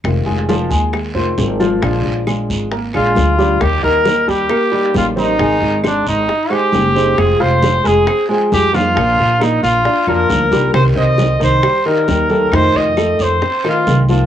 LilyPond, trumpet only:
\new Staff \with { instrumentName = "Trumpet" } { \time 4/4 \key f \dorian \tempo 4 = 134 r1 | r2 r8 f'4. | g'8 bes'4 g'4. f'8 ees'8~ | ees'4 d'8 ees'4 g'4. |
aes'8 c''4 aes'4 r8 g'8 f'8~ | f'4 ees'8 f'4 bes'4. | c''8 ees''4 c''4 bes'4. | c''8 ees''4 c''4 f'4 r8 | }